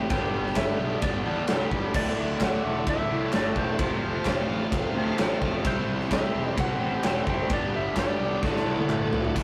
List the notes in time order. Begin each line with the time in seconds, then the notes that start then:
Already playing: C4
0.10 G1 G2 D3 G3 B3 D4 G4 B4 G5, kick, ride bell
0.33 G1 G3 B3 D4 G4
0.46 snare
0.56 G1 G3 B3 D4 G4 E5, kick, snare, clap, ride bell
0.79 B1 G3 B3 D4 G4
1.02 G1 D5, kick, ride bell
1.24 E2 G2 D3 G3
1.47 C2 G2 D3 G3 B3 D4 G4, snare, clap, ride bell
1.71 G1 G3 B3 D4 G4, kick
1.94 D1 D2 A2 D3 A3 E4 D5, kick, crash
2.17 D1 D3 A3 E4
2.40 D1 A2 D3 A3 E4 F#5, kick, snare, clap, ride bell
2.64 E1 D3 A3 E4
2.87 D1 E5, kick, ride bell
3.09 C2 D2 A2 D3
3.31 G1 D2 A2 D3 A3 E4, snare, clap, ride bell
3.35 D5
3.55 E1 D3 A3 E4 C5, kick
3.78 F1 F2 C3 F3 A3 C4 F4 C5, kick, ride bell
4.01 F1 F3 A3 C4 F4
4.25 F1 F3 A3 C4 F4, kick, snare, clap, ride bell
4.48 A1 F3 A3 C4 F4
4.72 F1, kick, ride bell
4.94 D2 F2 C3 F3
5.17 A1 F2 C3 F3 A3 C4 F4, snare, clap, ride bell
5.40 F1 F3 A3 C4 F4, kick
5.62 C2 C3 G3 C4 E4 G4 C5, kick, ride bell
5.67 C5
5.86 C2 C4 E4 G4 C5
6.00 snare
6.09 C2 C4 E4 G4 C5 E5, kick, snare, clap, ride bell
6.33 E1 C4 E4 G4 C5
6.58 C2 F#5, kick, ride bell
6.80 A1 C3 G3 C4
7.02 E1 C3 G3 C4 E4 G4 C5, snare, clap, ride bell
7.27 F#1 C4 E4 G4 C5 G5, kick
7.49 G1 G2 D3 G3 B3 D4 G4 B4, kick, ride bell
7.54 D5
7.73 G1 G3 B3 D4 G4 E5
7.95 G1 G3 B3 D4 G4, kick, snare, clap, ride bell
7.99 D5
8.18 C2 G3 B3 D4 G4
8.41 D1 D2 A2 D3 F#3 A3 D4 F#4 A4, kick, snare
8.56 snare
8.66 C2
8.77 high tom
8.88 G1 D2 A2 D3 A3 F#4, clap, mid tom
9.12 D1 D3 A3 F#4, floor tom
9.24 floor tom
9.35 D1 D2 A2 D3 A3 F#4, kick, crash